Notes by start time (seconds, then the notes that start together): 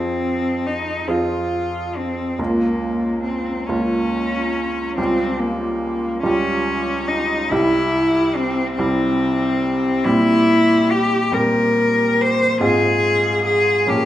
Already playing: F2 C4 F4 G#4
0.67 D#4
1.08 F2 C4 F4 G#4
1.97 C4
2.39 C#2 A#3 F4
3.23 C4
3.67 C#2 A#3 C#4 F4
4.97 C#2 G3 C4 F4 G4
5.38 A#3
6.23 C#2 G3 C#4 F4 G4
7.08 D#4
7.51 C2 G3 E4 G4
8.35 C4
8.75 C2 G3 C4 E4 G4
10.04 A#2 G3 C4 E4 G4
10.91 G4
11.32 A#2 G3 C4 G4 A#4
12.21 C5
12.60 G#2 G#3 C4 F4 G#4
13.45 G#4
13.87 A#2 F3 A#3 C#4 G4